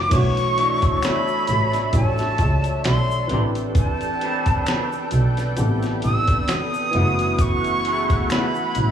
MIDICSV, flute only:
0, 0, Header, 1, 2, 480
1, 0, Start_track
1, 0, Key_signature, 2, "minor"
1, 0, Tempo, 909091
1, 61, Time_signature, 4, 2, 24, 8
1, 4706, End_track
2, 0, Start_track
2, 0, Title_t, "Flute"
2, 0, Program_c, 0, 73
2, 0, Note_on_c, 0, 86, 91
2, 71, Note_on_c, 0, 85, 115
2, 79, Note_off_c, 0, 86, 0
2, 553, Note_on_c, 0, 83, 101
2, 561, Note_off_c, 0, 85, 0
2, 1027, Note_off_c, 0, 83, 0
2, 1035, Note_on_c, 0, 81, 102
2, 1487, Note_off_c, 0, 81, 0
2, 1514, Note_on_c, 0, 84, 97
2, 1836, Note_off_c, 0, 84, 0
2, 1995, Note_on_c, 0, 81, 92
2, 2687, Note_off_c, 0, 81, 0
2, 3192, Note_on_c, 0, 88, 97
2, 3435, Note_on_c, 0, 87, 104
2, 3443, Note_off_c, 0, 88, 0
2, 3913, Note_on_c, 0, 85, 114
2, 3921, Note_off_c, 0, 87, 0
2, 4391, Note_on_c, 0, 83, 98
2, 4398, Note_off_c, 0, 85, 0
2, 4706, Note_off_c, 0, 83, 0
2, 4706, End_track
0, 0, End_of_file